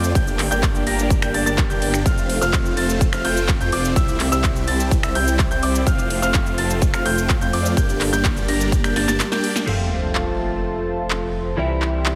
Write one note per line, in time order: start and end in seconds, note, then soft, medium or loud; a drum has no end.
0.00 0.13 F2 loud
0.00 0.12 A3 medium
0.00 0.13 A3 medium
0.00 0.11 C4 medium
0.00 0.12 C4 medium
0.00 0.12 F4 medium
0.00 0.13 F4 medium
0.00 0.12 C5 medium
0.00 0.12 D5 medium
0.00 0.12 D6 medium
0.00 closed hi-hat soft
0.04 shaker medium
0.15 0.49 G1 loud
0.15 0.48 A#3 medium
0.15 2.04 A#3 medium
0.15 0.48 D4 medium
0.15 2.04 D4 medium
0.15 0.48 G4 medium
0.15 2.04 G4 medium
0.15 0.48 D5 medium
0.15 0.48 G5 medium
0.15 0.48 G6 medium
0.15 kick loud
0.15 closed hi-hat medium
0.15 shaker medium
0.27 closed hi-hat soft
0.27 shaker soft
0.39 clap medium
0.39 open hi-hat loud
0.39 ride medium
0.51 0.84 G1 loud
0.51 0.84 A#3 loud
0.51 0.84 D4 medium
0.51 0.84 G4 medium
0.51 0.84 D5 medium
0.51 0.84 G5 loud
0.51 0.84 G6 loud
0.51 closed hi-hat soft
0.51 shaker medium
0.63 kick loud
0.63 clap loud
0.63 closed hi-hat medium
0.63 shaker medium
0.75 closed hi-hat soft
0.75 shaker soft
0.87 1.20 G1 loud
0.87 1.20 A#3 medium
0.87 1.20 D4 medium
0.87 1.20 G4 medium
0.87 1.20 D5 medium
0.87 1.20 A#5 medium
0.87 1.20 A#6 medium
0.87 open hi-hat loud
0.87 ride medium
0.99 closed hi-hat soft
0.99 shaker medium
1.10 kick loud
1.10 closed hi-hat medium
1.10 shaker medium
1.22 1.32 G1 loud
1.22 1.32 A#3 medium
1.22 1.32 D4 medium
1.22 1.32 G4 medium
1.22 1.32 D5 medium
1.22 1.32 G5 loud
1.22 1.32 G6 loud
1.22 finger snap medium
1.22 closed hi-hat soft
1.22 shaker soft
1.34 1.44 G1 loud
1.34 1.44 A#3 medium
1.34 1.44 D4 medium
1.34 1.44 G4 medium
1.34 1.44 D5 medium
1.34 1.44 A5 medium
1.34 1.44 A6 medium
1.34 open hi-hat loud
1.34 ride medium
1.46 1.68 G1 medium
1.46 1.63 A#3 loud
1.46 1.63 D4 loud
1.46 1.63 G4 medium
1.46 1.63 D5 medium
1.46 1.63 A5 loud
1.46 1.63 A6 loud
1.46 closed hi-hat soft
1.46 shaker medium
1.58 kick loud
1.58 clap loud
1.58 closed hi-hat medium
1.58 shaker medium
1.70 2.03 G1 medium
1.70 2.03 A#3 medium
1.70 2.03 D4 medium
1.70 2.03 G4 medium
1.70 2.03 D5 medium
1.70 2.03 G5 medium
1.70 2.03 G6 medium
1.70 closed hi-hat soft
1.70 shaker soft
1.82 open hi-hat loud
1.82 ride medium
1.94 finger snap medium
1.94 closed hi-hat soft
1.94 shaker medium
2.06 2.39 F1 loud
2.06 3.94 A3 medium
2.06 2.39 A3 medium
2.06 7.73 C4 medium
2.06 2.39 C4 medium
2.06 3.94 F4 medium
2.06 2.39 F4 medium
2.06 2.39 C5 medium
2.06 2.39 F5 medium
2.06 2.39 F6 medium
2.06 kick loud
2.06 closed hi-hat medium
2.06 shaker medium
2.18 closed hi-hat soft
2.18 shaker soft
2.29 open hi-hat loud
2.29 ride medium
2.41 2.75 F1 loud
2.41 2.74 A3 medium
2.41 2.74 C4 medium
2.41 2.74 F4 medium
2.41 2.74 C5 medium
2.41 2.74 F5 loud
2.41 2.74 F6 loud
2.41 closed hi-hat soft
2.41 shaker medium
2.53 kick loud
2.53 clap loud
2.53 closed hi-hat medium
2.53 shaker medium
2.65 closed hi-hat soft
2.65 shaker soft
2.77 3.11 F1 loud
2.77 3.10 A3 medium
2.77 3.10 C4 medium
2.77 3.10 F4 medium
2.77 3.10 C5 medium
2.77 3.10 A5 medium
2.77 3.10 A6 medium
2.77 open hi-hat medium
2.77 ride medium
2.89 closed hi-hat soft
2.89 shaker medium
3.01 kick loud
3.01 closed hi-hat medium
3.01 shaker medium
3.13 3.22 F1 medium
3.13 3.22 A3 loud
3.13 3.22 C4 medium
3.13 3.22 F4 medium
3.13 3.22 C5 medium
3.13 3.22 F5 loud
3.13 3.22 F6 loud
3.13 finger snap medium
3.13 closed hi-hat soft
3.13 shaker soft
3.25 3.58 F1 loud
3.25 3.58 A3 loud
3.25 3.58 C4 loud
3.25 3.58 F4 loud
3.25 3.58 C5 loud
3.25 3.58 G5 loud
3.25 3.58 G6 loud
3.25 open hi-hat loud
3.25 ride medium
3.37 closed hi-hat soft
3.37 shaker medium
3.49 kick loud
3.49 clap loud
3.49 closed hi-hat medium
3.49 shaker medium
3.60 3.70 F2 loud
3.60 3.70 A3 medium
3.60 3.70 C4 medium
3.60 3.70 F4 medium
3.60 3.70 C5 medium
3.60 3.70 G5 loud
3.60 3.70 G6 loud
3.60 closed hi-hat soft
3.60 shaker soft
3.72 3.94 F1 loud
3.72 3.93 A3 medium
3.72 3.93 C4 medium
3.72 3.93 F4 medium
3.72 3.93 C5 medium
3.72 3.93 D5 medium
3.72 3.93 D6 medium
3.72 open hi-hat medium
3.72 ride medium
3.84 closed hi-hat soft
3.84 shaker medium
3.96 4.29 C2 loud
3.96 5.85 C3 medium
3.96 4.29 C4 medium
3.96 4.29 E4 medium
3.96 5.85 E4 medium
3.96 5.85 G4 medium
3.96 4.29 E5 medium
3.96 4.29 E6 medium
3.96 kick loud
3.96 closed hi-hat loud
3.96 shaker medium
4.08 closed hi-hat soft
4.08 shaker soft
4.20 clap medium
4.20 open hi-hat loud
4.20 ride medium
4.32 4.65 C2 loud
4.32 4.65 G3 medium
4.32 4.65 C4 medium
4.32 4.65 E4 medium
4.32 4.65 C5 medium
4.32 4.65 E5 loud
4.32 4.65 E6 loud
4.32 closed hi-hat soft
4.32 shaker medium
4.44 kick loud
4.44 clap loud
4.44 closed hi-hat loud
4.44 shaker medium
4.56 closed hi-hat soft
4.56 shaker soft
4.68 5.01 C2 loud
4.68 5.01 G3 medium
4.68 5.00 C4 medium
4.68 5.01 E4 medium
4.68 5.01 C5 medium
4.68 5.01 A5 medium
4.68 5.00 A6 medium
4.68 open hi-hat medium
4.68 ride medium
4.80 closed hi-hat soft
4.80 shaker medium
4.91 kick loud
4.91 closed hi-hat medium
4.91 shaker medium
5.03 5.13 C2 loud
5.03 5.13 G3 medium
5.03 5.13 C4 medium
5.03 5.13 E4 medium
5.03 5.13 C5 medium
5.03 5.13 E5 loud
5.03 5.13 E6 loud
5.03 finger snap medium
5.03 closed hi-hat soft
5.03 shaker soft
5.15 5.49 C2 medium
5.15 5.48 G3 loud
5.15 5.48 C4 loud
5.15 5.48 E4 medium
5.15 5.48 C5 medium
5.15 5.48 G5 loud
5.15 5.48 G6 loud
5.15 open hi-hat loud
5.15 ride medium
5.27 closed hi-hat soft
5.27 shaker medium
5.39 kick loud
5.39 clap loud
5.39 closed hi-hat medium
5.39 shaker medium
5.51 5.60 C2 medium
5.51 5.60 G3 medium
5.51 5.60 C4 medium
5.51 5.60 E4 medium
5.51 5.60 C5 medium
5.51 5.60 G5 loud
5.51 5.60 G6 loud
5.51 closed hi-hat soft
5.51 shaker soft
5.63 5.84 C2 loud
5.63 5.84 G3 medium
5.63 5.84 C4 medium
5.63 5.84 E4 medium
5.63 5.84 C5 medium
5.63 5.84 D5 medium
5.63 5.84 D6 medium
5.63 open hi-hat medium
5.63 ride medium
5.75 closed hi-hat soft
5.75 shaker medium
5.87 6.20 F1 loud
5.87 6.20 A3 medium
5.87 7.75 A3 medium
5.87 6.20 C4 medium
5.87 7.75 F4 medium
5.87 6.19 F6 medium
5.87 kick loud
5.87 closed hi-hat loud
5.87 shaker medium
5.98 closed hi-hat soft
5.98 shaker soft
6.10 open hi-hat loud
6.10 ride medium
6.22 6.56 F1 loud
6.22 6.55 A3 medium
6.22 6.55 C4 medium
6.22 6.55 F4 medium
6.22 6.55 C5 medium
6.22 6.55 F5 loud
6.22 6.55 F6 loud
6.22 closed hi-hat soft
6.22 shaker medium
6.34 kick loud
6.34 clap loud
6.34 closed hi-hat loud
6.34 shaker medium
6.46 closed hi-hat soft
6.46 shaker soft
6.58 6.91 F1 medium
6.58 6.91 A3 medium
6.58 6.91 C4 medium
6.58 6.91 F4 medium
6.58 6.91 C5 medium
6.58 6.91 A5 medium
6.58 6.91 A6 medium
6.58 open hi-hat medium
6.58 ride medium
6.70 closed hi-hat soft
6.70 shaker medium
6.82 kick loud
6.82 closed hi-hat loud
6.82 shaker medium
6.94 7.03 F1 loud
6.94 7.03 A3 medium
6.94 7.03 C4 medium
6.94 7.03 F4 medium
6.94 7.03 C5 medium
6.94 7.03 F5 loud
6.94 7.03 F6 loud
6.94 finger snap medium
6.94 closed hi-hat soft
6.94 shaker soft
7.06 7.39 F1 loud
7.06 7.39 A3 loud
7.06 7.39 C4 loud
7.06 7.39 F4 loud
7.06 7.39 C5 medium
7.06 7.39 G5 loud
7.06 7.39 G6 loud
7.06 open hi-hat loud
7.06 ride medium
7.17 closed hi-hat soft
7.17 shaker medium
7.29 kick loud
7.29 clap loud
7.29 closed hi-hat loud
7.29 shaker medium
7.41 7.51 F2 medium
7.41 7.50 A3 medium
7.41 7.50 C4 medium
7.41 7.50 F4 medium
7.41 7.50 C5 medium
7.41 7.51 G5 loud
7.41 7.50 G6 loud
7.41 closed hi-hat soft
7.41 shaker soft
7.53 7.75 F2 medium
7.53 7.74 A3 medium
7.53 7.74 C4 medium
7.53 7.74 F4 medium
7.53 7.74 C5 medium
7.53 7.74 D5 medium
7.53 7.74 D6 medium
7.53 open hi-hat medium
7.53 ride medium
7.65 closed hi-hat soft
7.65 shaker medium
7.77 8.10 G1 loud
7.77 9.66 G3 medium
7.77 9.66 A#3 medium
7.77 8.10 A#3 medium
7.77 9.66 D4 medium
7.77 8.10 D4 medium
7.77 8.10 G4 medium
7.77 8.10 D5 medium
7.77 8.10 G5 medium
7.77 8.10 G6 medium
7.77 kick loud
7.77 closed hi-hat loud
7.77 shaker medium
7.89 closed hi-hat soft
7.89 shaker soft
8.01 clap medium
8.01 open hi-hat loud
8.01 ride medium
8.13 8.46 G1 loud
8.13 8.46 A#3 loud
8.13 8.46 D4 medium
8.13 8.46 G4 medium
8.13 8.46 D5 medium
8.13 8.46 G5 loud
8.13 8.46 G6 loud
8.13 closed hi-hat soft
8.13 shaker medium
8.25 kick loud
8.25 clap loud
8.25 closed hi-hat loud
8.25 shaker medium
8.37 closed hi-hat soft
8.37 shaker soft
8.48 8.82 G1 medium
8.48 8.81 A#3 medium
8.48 8.81 D4 medium
8.48 8.81 G4 medium
8.48 8.81 D5 medium
8.48 8.81 A#5 medium
8.48 8.81 A#6 medium
8.48 open hi-hat medium
8.48 ride medium
8.60 closed hi-hat soft
8.60 shaker medium
8.72 kick loud
8.72 closed hi-hat loud
8.72 shaker medium
8.84 8.94 G1 loud
8.84 8.94 A#3 loud
8.84 8.94 D4 medium
8.84 8.94 G4 medium
8.84 8.94 D5 medium
8.84 8.94 G5 loud
8.84 8.94 G6 loud
8.84 finger snap medium
8.84 closed hi-hat soft
8.84 shaker soft
8.96 9.06 G1 medium
8.96 9.06 A#3 medium
8.96 9.06 D4 medium
8.96 9.06 G4 medium
8.96 9.06 D5 medium
8.96 9.06 A5 medium
8.96 9.06 A6 medium
8.96 snare medium
8.96 open hi-hat loud
8.96 ride medium
9.08 9.20 G1 loud
9.08 9.25 A#3 loud
9.08 9.25 D4 medium
9.08 9.25 G4 medium
9.08 9.25 D5 medium
9.08 9.25 A5 loud
9.08 9.25 A6 loud
9.08 snare medium
9.08 closed hi-hat soft
9.08 shaker medium
9.20 snare medium
9.20 clap loud
9.20 closed hi-hat loud
9.20 shaker medium
9.32 9.65 A#3 medium
9.32 9.65 D4 medium
9.32 9.65 G4 medium
9.32 9.65 D5 medium
9.32 9.65 G5 medium
9.32 9.65 G6 medium
9.32 snare medium
9.32 closed hi-hat soft
9.32 shaker soft
9.44 open hi-hat loud
9.44 ride medium
9.56 snare medium
9.56 closed hi-hat soft
9.56 shaker medium
9.66 11.56 F1 medium
9.66 11.54 F3 medium
9.66 11.55 A3 medium
9.66 11.55 C4 medium
9.66 11.56 F4 medium
9.66 11.56 A4 medium
9.66 12.15 C5 medium
9.66 11.56 A5 medium
9.66 crash medium
9.66 sub drop medium
10.15 clap loud
11.10 clap loud
11.57 12.15 C2 medium
11.57 12.15 E3 medium
11.57 12.15 G3 medium
11.57 12.15 C4 medium
11.57 12.15 E4 medium
11.57 12.15 G4 medium
11.57 12.15 G5 medium
11.82 clap medium
12.06 clap loud